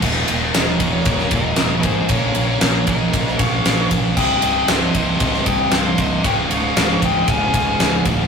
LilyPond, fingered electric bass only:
\new Staff \with { instrumentName = "Fingered electric bass" } { \clef bass \time 4/4 \key c \phrygian \tempo 4 = 116 ees,,8 ees,,8 ees,,8 ees,,8 ees,,8 ees,,8 ees,,8 aes,,8 | bes,,8 bes,,8 bes,,8 bes,,8 bes,,8 bes,,8 bes,,8 bes,,8 | c,,8 c,,8 c,,8 c,,8 c,,8 c,,8 c,,8 c,,8 | des,,8 des,,8 des,,8 des,,8 des,,8 des,,8 des,,8 d,,8 | }